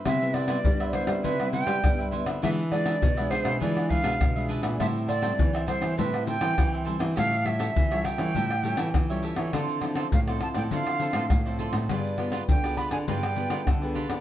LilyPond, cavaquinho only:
\new Staff \with { instrumentName = "Cavaquinho" } { \time 4/4 \key c \major \tempo 4 = 101 <e' b' c'' e''>8 <e' b' c'' e''>16 <e' b' c'' e''>16 r16 <b' c'' e''>16 <e' b' c'' e''>16 <b' c'' e''>16 <e' b' c'' e''>8 <e' b' c'' e''>16 <e' b' c'' e''>16 r16 <b' c'' e''>16 <e' b' c'' e''>16 <b' c'' e''>16 | <d' gis' b' e''>8 <d' gis' b' e''>16 <d' gis' b' e''>16 r16 <gis' b' e''>16 <d' gis' b' e''>16 <gis' b' e''>16 <d' gis' b' e''>8 <d' gis' b' e''>16 <d' gis' b' e''>16 r16 <gis' b' e''>16 <d' gis' b' e''>16 <gis' b' e''>16 | <a' c'' e'' g''>8 <a' c'' e'' g''>16 <a' c'' e'' g''>16 r16 <c'' e'' g''>16 <a' c'' e'' g''>16 <c'' e'' g''>16 <a' c'' e'' g''>8 <a' c'' e'' g''>16 <a' c'' e'' g''>16 r16 <c'' e'' g''>16 <a' c'' e'' g''>16 <c'' e'' g''>16 | <g' a' cis'' e''>8 <g' a' cis'' e''>16 <g' a' cis'' e''>16 r16 <a' cis'' e''>16 <g' a' cis'' e''>16 <a' cis'' e''>16 <g' a' cis'' e''>8 <g' a' cis'' e''>16 <g' a' cis'' e''>16 r16 <a' cis'' e''>16 <g' a' cis'' e''>16 <a' cis'' e''>16 |
<f' a' c'' d''>8 <f' a' c'' d''>16 <f' a' c'' d''>16 r16 <a' c'' d''>16 <f' a' c'' d''>16 <a' c'' d''>16 <f' a' c'' d''>8 <f' a' c'' d''>16 <f' a' c'' d''>16 r16 <a' c'' d''>16 <f' a' c'' d''>16 <a' c'' d''>16 | <f' g' b' d''>8 <f' g' b' d''>16 <f' g' b' d''>16 r16 <g' b' d''>16 <f' g' b' d''>16 <g' b' d''>16 <f' g' b' d''>8 <f' g' b' d''>16 <f' g' b' d''>16 r16 <g' b' d''>16 <f' g' b' d''>16 <g' b' d''>16 | }